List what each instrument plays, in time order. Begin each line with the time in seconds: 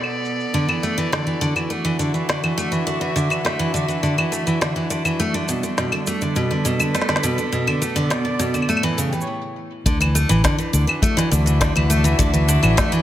Already playing: string quartet B2 B3 A4 D5
0.04 claves
0.25 shaker
0.40 shaker
0.54 steel-string acoustic guitar D3, string quartet D3, shaker
0.68 steel-string acoustic guitar E3, claves
0.80 steel-string acoustic guitar A3, string quartet D4, shaker
0.98 steel-string acoustic guitar E3, shaker
1.03 string quartet F#4
1.12 steel-string acoustic guitar D3, snare, shaker
1.27 steel-string acoustic guitar E3
1.41 steel-string acoustic guitar D3, shaker
1.56 steel-string acoustic guitar E3, claves, shaker
1.70 steel-string acoustic guitar A3, shaker
1.81 steel-string acoustic guitar E3, string quartet E5
1.99 steel-string acoustic guitar D3, shaker
2.14 steel-string acoustic guitar E3, shaker
2.29 steel-string acoustic guitar D3, snare, shaker
2.44 steel-string acoustic guitar E3, claves
2.58 steel-string acoustic guitar A3, shaker
2.72 steel-string acoustic guitar E3, shaker
2.87 steel-string acoustic guitar D3, shaker
3.01 steel-string acoustic guitar E3
3.16 steel-string acoustic guitar D3, shaker
3.30 steel-string acoustic guitar E3, claves, shaker
3.45 steel-string acoustic guitar A3, snare, shaker
3.59 steel-string acoustic guitar E3
3.74 steel-string acoustic guitar D3, shaker
3.88 steel-string acoustic guitar E3, shaker
4.03 steel-string acoustic guitar D3, shaker
4.18 steel-string acoustic guitar E3, claves
4.32 steel-string acoustic guitar A3, shaker
4.47 steel-string acoustic guitar E3, shaker
4.61 steel-string acoustic guitar D3, snare, shaker
4.76 steel-string acoustic guitar E3
4.90 steel-string acoustic guitar D3, shaker
5.05 steel-string acoustic guitar E3, claves, shaker
5.20 string quartet G3, steel-string acoustic guitar A3, shaker
5.34 steel-string acoustic guitar D3
5.49 steel-string acoustic guitar B2, shaker
5.63 steel-string acoustic guitar D3, shaker
5.70 string quartet A4
5.78 steel-string acoustic guitar B2, snare, shaker
5.92 steel-string acoustic guitar D3, claves
6.07 steel-string acoustic guitar A3, shaker
6.22 steel-string acoustic guitar D3, string quartet B4, shaker
6.36 steel-string acoustic guitar B2, shaker
6.51 steel-string acoustic guitar D3
6.65 steel-string acoustic guitar B2, shaker
6.80 steel-string acoustic guitar D3, claves, shaker
6.94 steel-string acoustic guitar A3, snare, shaker
7.01 snare
7.09 steel-string acoustic guitar D3, snare
7.16 snare
7.23 steel-string acoustic guitar B2, shaker
7.38 steel-string acoustic guitar D3, shaker
7.52 string quartet B2, steel-string acoustic guitar B2, shaker
7.59 string quartet B3
7.67 steel-string acoustic guitar D3, claves
7.82 steel-string acoustic guitar A3, shaker
7.96 steel-string acoustic guitar D3, shaker
8.05 string quartet D5
8.10 steel-string acoustic guitar B2, snare, shaker
8.25 steel-string acoustic guitar D3
8.39 steel-string acoustic guitar B2, shaker
8.54 steel-string acoustic guitar D3, claves, shaker
8.62 claves
8.69 string quartet A2, steel-string acoustic guitar A3, claves, shaker
8.77 claves
8.83 steel-string acoustic guitar E3
8.91 string quartet A3
8.98 steel-string acoustic guitar C#3, shaker
9.08 string quartet G4
9.13 steel-string acoustic guitar E3, shaker
9.21 string quartet C#5, shaker
9.85 fingered electric bass D2, string quartet D3, steel-string acoustic guitar D3, kick, closed hi-hat, shaker
10.01 steel-string acoustic guitar E3, closed hi-hat, claves, shaker
10.11 string quartet D4
10.15 steel-string acoustic guitar A3, shaker
10.29 fingered electric bass A1, steel-string acoustic guitar E3, shaker
10.44 steel-string acoustic guitar D3, kick, snare, closed hi-hat, shaker
10.58 steel-string acoustic guitar E3, shaker
10.73 fingered electric bass D2, steel-string acoustic guitar D3, shaker
10.83 string quartet F#4
10.87 steel-string acoustic guitar E3, claves
10.98 string quartet E5
11.02 steel-string acoustic guitar A3, kick, closed hi-hat, shaker
11.17 steel-string acoustic guitar E3, snare, closed hi-hat, shaker
11.31 fingered electric bass D2, steel-string acoustic guitar D3, shaker
11.46 steel-string acoustic guitar E3, closed hi-hat, shaker
11.61 steel-string acoustic guitar D3, kick, snare, closed hi-hat, shaker
11.76 fingered electric bass D2, steel-string acoustic guitar E3, closed hi-hat, claves
11.90 steel-string acoustic guitar A3, shaker
12.04 steel-string acoustic guitar E3, closed hi-hat, shaker
12.19 fingered electric bass D2, steel-string acoustic guitar D3, kick, closed hi-hat, shaker
12.34 steel-string acoustic guitar E3, closed hi-hat, shaker
12.48 steel-string acoustic guitar D3, shaker
12.63 fingered electric bass A1, steel-string acoustic guitar E3, claves, shaker
12.77 steel-string acoustic guitar A3, kick, snare, closed hi-hat, shaker
12.92 steel-string acoustic guitar E3, shaker